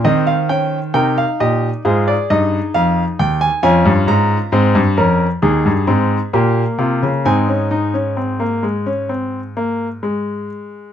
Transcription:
0.04 0.93 D#3 medium
0.04 0.33 C4 medium
0.04 0.93 C5 medium
0.04 0.27 D#5 medium
0.27 0.49 F5 medium
0.49 0.78 C#4 medium
0.49 0.78 G5 medium
0.94 1.22 C3 medium
0.94 1.82 D#4 medium
0.94 1.22 A#4 medium
0.94 1.17 G5 medium
1.18 1.40 F5 medium
1.40 1.68 A#2 medium
1.40 1.68 G4 medium
1.40 1.68 D#5 medium
1.85 2.13 G#2 medium
1.85 2.13 F4 medium
1.85 3.60 G#4 medium
1.85 2.07 C5 medium
2.08 2.29 D5 medium
2.30 2.58 G2 medium
2.30 3.61 D#4 medium
2.30 2.58 D#5 medium
2.74 3.02 F2 medium
2.74 3.02 F5 medium
3.19 3.47 D#2 medium
3.19 3.41 G5 medium
3.41 3.61 G#5 medium
3.63 3.85 F2 loud
3.63 4.50 C#4 medium
3.63 4.50 F4 medium
3.63 3.91 G#5 medium
3.85 4.08 G2 medium
4.08 4.36 G#2 medium
4.08 7.22 A#5 medium
4.52 4.75 G#2 medium
4.52 4.81 C4 medium
4.52 4.81 C5 medium
4.75 4.97 G2 loud
4.97 5.26 F2 medium
4.97 5.26 C#4 medium
4.97 5.26 A#4 medium
5.42 5.65 D#2 medium
5.42 5.71 D#4 medium
5.42 6.31 G#4 medium
5.65 5.88 G2 medium
5.87 6.16 G#2 medium
5.87 6.16 C4 medium
6.33 6.62 A#2 medium
6.33 7.23 A#3 medium
6.33 6.62 G4 medium
6.78 7.02 C3 medium
6.78 7.08 F4 medium
7.02 7.25 C#3 medium
7.25 10.47 G#2 medium
7.25 7.48 C4 medium
7.25 7.70 D#4 medium
7.25 10.47 G#5 medium
7.48 7.72 C#4 medium
7.71 7.94 D#4 medium
7.94 8.18 C#4 medium
8.17 8.41 C4 medium
8.40 8.64 A#3 medium
8.63 8.87 G#3 medium
8.86 9.10 C#4 medium
9.09 9.39 C4 medium
9.57 9.86 A#3 medium
10.03 10.93 G#3 medium

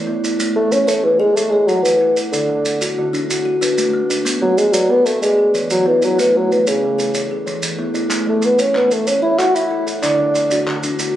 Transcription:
0.00 0.23 E3 medium
0.00 0.23 D5 medium
0.07 0.39 B3 medium
0.07 0.22 E4 medium
0.23 0.56 E4 medium
0.23 maracas medium
0.39 0.72 A3 medium
0.39 maracas medium
0.56 0.74 A3 medium
0.56 0.88 A3 medium
0.72 0.89 C#4 loud
0.72 maracas medium
0.87 1.06 A3 medium
0.87 1.20 C#5 medium
0.87 maracas medium
1.03 1.21 E3 medium
1.03 1.36 A3 medium
1.03 1.35 C#5 medium
1.19 1.36 G#3 loud
1.19 1.52 A4 medium
1.35 1.51 A3 medium
1.35 1.69 C#5 medium
1.35 maracas medium
1.50 1.68 G#3 medium
1.50 2.01 C#5 medium
1.67 1.84 F#3 medium
1.67 2.01 A4 medium
1.67 2.17 F#5 medium
1.67 maracas medium
1.83 2.16 E3 medium
1.83 2.17 E4 medium
1.83 maracas medium
2.01 2.33 E4 medium
2.01 2.16 A4 medium
2.17 2.65 A4 medium
2.17 maracas medium
2.32 2.93 D3 medium
2.32 2.65 D3 medium
2.32 maracas medium
2.49 2.81 D3 medium
2.65 maracas medium
2.81 3.30 D4 medium
2.81 3.13 F#4 medium
2.81 maracas medium
2.98 3.30 D3 medium
2.98 3.29 F#4 medium
3.13 3.46 D4 medium
3.13 maracas medium
3.30 3.62 F#4 medium
3.30 maracas medium
3.45 3.94 F#4 medium
3.61 3.94 D4 medium
3.61 4.10 B4 medium
3.61 maracas medium
3.77 4.10 A3 medium
3.77 maracas medium
3.93 4.26 A3 medium
4.10 4.58 D4 medium
4.10 maracas medium
4.25 4.58 B3 medium
4.25 maracas medium
4.41 4.59 F#3 medium
4.41 4.74 B3 medium
4.58 4.74 G#3 loud
4.58 maracas medium
4.73 4.92 F#3 loud
4.73 5.22 B4 medium
4.73 5.06 D5 medium
4.73 maracas medium
4.90 5.22 B3 medium
4.90 5.07 B3 loud
4.90 5.21 D5 medium
5.05 5.21 A3 loud
5.05 5.22 B4 medium
5.05 maracas medium
5.22 5.52 G#3 medium
5.22 5.38 D5 medium
5.22 maracas medium
5.38 5.86 G#4 medium
5.54 5.86 E3 medium
5.54 6.03 C#5 medium
5.54 maracas medium
5.70 6.02 E3 medium
5.70 5.89 F#3 medium
5.70 maracas medium
5.86 6.06 E3 medium
5.86 6.18 B3 medium
5.86 6.02 E4 medium
6.02 6.21 F#3 medium
6.02 6.35 E4 medium
6.02 maracas medium
6.18 6.38 E3 medium
6.18 6.51 A3 medium
6.18 maracas medium
6.35 6.54 F#3 medium
6.35 6.67 A3 medium
6.52 6.67 E3 medium
6.52 maracas medium
6.67 7.27 C#3 medium
6.67 7.15 A4 medium
6.67 6.99 C#5 medium
6.67 maracas medium
6.83 7.15 A3 medium
6.83 7.13 C#5 medium
6.98 7.15 A4 medium
6.98 maracas medium
7.14 7.31 C#5 medium
7.14 maracas medium
7.31 7.79 G#4 medium
7.46 7.79 E3 medium
7.46 7.95 C#5 medium
7.46 maracas medium
7.62 7.95 E3 medium
7.62 maracas medium
7.78 8.11 B3 medium
7.78 7.93 E4 medium
7.94 8.26 E4 medium
7.94 maracas medium
8.10 8.42 A3 medium
8.10 clap medium
8.10 maracas medium
8.26 8.59 A3 medium
8.26 8.47 A3 medium
8.42 8.62 B3 medium
8.42 clap soft
8.42 maracas soft
8.59 8.79 C#4 medium
8.59 9.07 A4 medium
8.59 8.91 C#5 medium
8.59 clap soft
8.59 maracas medium
8.75 9.07 A3 medium
8.75 8.94 B3 medium
8.75 9.06 C#5 medium
8.75 clap medium
8.91 9.09 A3 medium
8.91 9.23 A4 medium
8.91 maracas medium
9.07 9.22 C#4 medium
9.07 9.39 C#5 medium
9.07 maracas medium
9.22 9.40 E4 loud
9.22 9.71 C#5 medium
9.39 9.56 F#4 loud
9.39 9.71 A4 medium
9.39 9.87 F#5 medium
9.39 clap medium
9.39 maracas medium
9.55 9.87 E4 medium
9.55 9.87 E4 loud
9.55 maracas medium
9.71 10.03 E4 medium
9.71 9.85 A4 medium
9.87 10.35 A4 medium
9.87 maracas medium
10.02 10.35 D3 medium
10.02 10.63 D4 medium
10.02 clap medium
10.02 maracas medium
10.19 10.51 D3 medium
10.35 clap soft
10.35 maracas medium
10.51 10.99 D4 medium
10.51 10.83 F#4 medium
10.51 clap soft
10.51 maracas medium
10.67 10.99 D3 medium
10.67 10.98 F#4 medium
10.67 clap medium
10.83 11.15 D4 medium
10.83 maracas medium
10.99 11.16 F#4 medium
10.99 maracas medium

